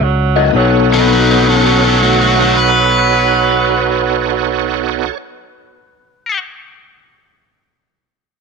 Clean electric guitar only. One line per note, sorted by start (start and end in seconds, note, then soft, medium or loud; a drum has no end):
0.00 muted clean electric guitar stroke soft
0.36 0.54 F#3 medium
0.36 0.54 E4 medium
0.36 0.54 A#4 medium
0.36 0.54 D#5 medium
0.52 5.10 B3 loud
0.52 5.12 D#4 medium
0.52 5.14 A4 medium
0.57 5.15 C#5 medium